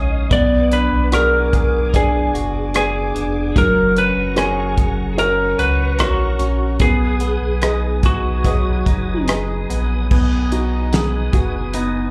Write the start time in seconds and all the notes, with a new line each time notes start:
Already playing: A#1 C#3 G#3 C#4 D#4 G#4 C#5 D#5 F5 D#6
0.31 B1 B3 D5 G#5 D6, kick, closed hi-hat
0.72 D4 B4, closed hi-hat
0.92 B1
1.12 F#4 G#4 A#4 D5, cross-stick, closed hi-hat
1.53 G#4, kick, closed hi-hat
1.94 D4 G#4 B4 D5, kick, closed hi-hat
2.34 F#1 F#4, closed hi-hat
2.74 G#4 B4 D5, cross-stick, closed hi-hat
3.15 F1 D4, closed hi-hat
3.56 F#1 F#3 A#4 F#5 A#5 C#6, kick, closed hi-hat
3.96 C#4 B4, closed hi-hat
4.16 F#1
4.36 F#4 G#4 A#4 C#5, cross-stick, closed hi-hat
4.78 kick, closed hi-hat
5.17 C#4 F#4 A#4 C#5, closed hi-hat
5.59 C#2 F#4 B4, closed hi-hat
5.99 A#1 F#4 A#4 C#5, cross-stick, closed hi-hat
6.39 A#1 C#4, closed hi-hat
6.79 B1 B3 G#4 B4 G#5 D#6, kick, closed hi-hat
7.20 B3, closed hi-hat
7.41 B1
7.62 D#4 G#4 B4 D#5, cross-stick, closed hi-hat
8.03 F#4 G#4, kick, closed hi-hat
8.44 F#3 G#4 B4 D#5, kick, closed hi-hat
8.86 F#1 D#4, kick, closed hi-hat
9.28 G#4 B4 D#5, cross-stick, closed hi-hat
9.70 A#1 B3, closed hi-hat
10.11 B1 B3 G#4 B4 G#5 D#6, kick, crash
10.52 D#4 F#4, closed hi-hat
10.93 B3 G#4, snare, closed hi-hat
11.33 F#1 F#4 G#4, kick, closed hi-hat
11.74 B3 D#4, closed hi-hat